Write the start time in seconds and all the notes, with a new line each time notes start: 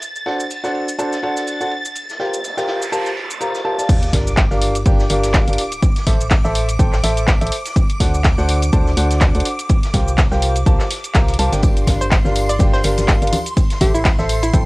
Already playing: A6
0.02 ride, cabasa
0.16 cabasa
0.26 D4 F#4 A4 C5 F#5, snare, ride
0.40 cabasa
0.51 ride, cabasa
0.64 D4 F#4 A4 C5 F#5, snare, cabasa
0.75 ride
0.88 cabasa
0.99 D4 F#4 A4 C5 A5, ride, cabasa
1.12 snare, cabasa
1.23 D4 F#4 A4 C5 F#5, ride
1.36 snare, cabasa
1.47 ride, cabasa
1.61 D4 F#4 A4 C5 F#5, cabasa
1.71 ride
1.85 cabasa
1.95 ride, noise sweep, cabasa
2.09 snare, cabasa
2.19 F4 G4 A#4 C5 G5, snare, ride
2.34 cabasa
2.44 ride, cabasa
2.57 F4 G4 A#4 C5 G5, snare, cabasa
2.68 snare, ride
2.81 snare, cabasa
2.92 F4 G4 A#4 C5 A5, ride, cabasa
3.05 snare, cabasa
3.16 snare, ride
3.30 cabasa
3.40 F4 G4 A#4 C5 A#5, ride, cabasa
3.54 snare, cabasa
3.65 F4 G4 A#4 C5 A5, ride
3.78 F4 G4 A#4 D5 A5, snare, cabasa
3.89 D6, kick, closed hi-hat, crash, ride, sub drop, cabasa
4.03 closed hi-hat, cabasa
4.13 G1 D4 F4 G4 A#4 F5, kick, snare, open hi-hat, ride
4.27 cabasa
4.36 kick, snare, clap, closed hi-hat, ride, cabasa
4.50 G1 D4 F4 G4 A#4 F5, snare, cabasa
4.61 open hi-hat, ride
4.75 closed hi-hat, cabasa
4.85 G1 D4 F4 G4 A#4 G5, kick, closed hi-hat, ride, cabasa
4.99 snare, cabasa
5.09 G1 D4 F4 G4 A#4 F5, open hi-hat, ride
5.24 snare, closed hi-hat, cabasa
5.34 kick, snare, clap, closed hi-hat, ride, cabasa
5.48 G1 D4 F4 G4 A#4 F5, closed hi-hat, cabasa
5.53 closed hi-hat
5.58 open hi-hat, ride
5.72 closed hi-hat, cabasa
5.82 kick, closed hi-hat, ride, cabasa
5.96 snare, closed hi-hat, cabasa
6.07 A1 A4 C5 E5, kick, snare, open hi-hat, ride
6.21 cabasa
6.30 kick, snare, clap, closed hi-hat, ride, cabasa
6.44 A1 A4 C5 E5, snare, cabasa
6.55 open hi-hat, ride
6.69 closed hi-hat, cabasa
6.79 A1 A4 C5 G5, kick, closed hi-hat, ride, cabasa
6.93 snare, clap, cabasa
7.03 A1 A4 C5 E5, snare, open hi-hat, ride
7.17 closed hi-hat, cabasa
7.27 kick, snare, clap, closed hi-hat, cabasa
7.41 A1 A4 C5 E5, snare, closed hi-hat, cabasa
7.47 closed hi-hat
7.52 open hi-hat, ride
7.65 snare, closed hi-hat, cabasa
7.76 kick, closed hi-hat, ride, cabasa
7.90 closed hi-hat, cabasa
8.00 D2 D4 F#4 A4 C5 F#5, kick, snare, open hi-hat, ride
8.14 cabasa
8.24 kick, snare, clap, closed hi-hat, ride, cabasa
8.38 D2 D4 F#4 A4 C5 F#5, snare, cabasa
8.49 open hi-hat, ride
8.62 closed hi-hat, cabasa
8.72 D2 D4 F#4 A4 C5 A5, kick, closed hi-hat, ride, cabasa
8.87 snare, cabasa
8.97 D2 D4 F#4 A4 C5 F#5, open hi-hat, ride
9.11 snare, closed hi-hat, cabasa
9.20 kick, snare, clap, closed hi-hat, ride, cabasa
9.35 D2 D4 F#4 A4 C5 F#5, closed hi-hat, cabasa
9.40 closed hi-hat
9.45 open hi-hat, ride
9.59 closed hi-hat, cabasa
9.69 kick, closed hi-hat, ride, cabasa
9.83 snare, closed hi-hat, cabasa
9.93 C2 F4 G4 A#4 C5 G5, kick, snare, open hi-hat, ride
10.08 cabasa
10.18 kick, snare, clap, closed hi-hat, ride, cabasa
10.32 C2 F4 G4 A#4 C5 G5, snare, cabasa
10.42 open hi-hat, ride
10.56 closed hi-hat, cabasa
10.66 C2 F4 G4 A#4 C5 A5, kick, closed hi-hat, ride, cabasa
10.79 snare, clap, cabasa
10.91 snare, open hi-hat, ride
11.04 closed hi-hat, cabasa
11.15 C2 F4 G4 A#4 C5 A#5, kick, snare, clap, closed hi-hat, ride, cabasa
11.28 snare, closed hi-hat, cabasa
11.34 closed hi-hat
11.39 C2 F4 G4 A#4 C5 A5, open hi-hat, ride
11.52 G1 D4 F4 G4 A#4 G5, snare, closed hi-hat, cabasa
11.62 C6, kick, closed hi-hat, ride, tambourine, cabasa
11.77 closed hi-hat, tambourine, cabasa
11.87 G1 D4 F4 G4 A#4 F5, kick, snare, open hi-hat, ride, tambourine, high conga
12.01 C5, tambourine, cabasa
12.11 kick, snare, clap, closed hi-hat, ride, tambourine, cabasa
12.25 G1 D4 F4 G4 A#4 F5, snare, high conga, cabasa
12.35 open hi-hat, ride, tambourine
12.49 D5, closed hi-hat, tambourine, cabasa
12.59 G1 D4 F4 G4 A#4 G5, kick, closed hi-hat, ride, tambourine, high conga, cabasa
12.74 C5, snare, cabasa
12.84 G1 D4 F4 G4 A#4 F5, open hi-hat, ride, tambourine
12.97 snare, closed hi-hat, tambourine, high conga, cabasa
13.08 kick, snare, clap, closed hi-hat, ride, tambourine, cabasa
13.22 G1 D4 F4 G4 A#4 F5, closed hi-hat, tambourine, cabasa
13.27 closed hi-hat
13.33 open hi-hat, ride, tambourine, high conga
13.46 closed hi-hat, tambourine, cabasa
13.57 kick, closed hi-hat, ride, tambourine, cabasa
13.70 snare, closed hi-hat, tambourine, cabasa
13.81 A1 G4 A4 C5 E5, kick, snare, open hi-hat, tambourine, high conga
13.94 E4, tambourine, cabasa
14.05 kick, snare, clap, closed hi-hat, ride, tambourine, cabasa
14.18 A1 A4 C5 E5, snare, high conga, cabasa
14.29 open hi-hat, ride, tambourine
14.43 E4, closed hi-hat, tambourine, cabasa
14.53 A1 A4 C5 G5, kick, closed hi-hat, ride, tambourine, high conga, cabasa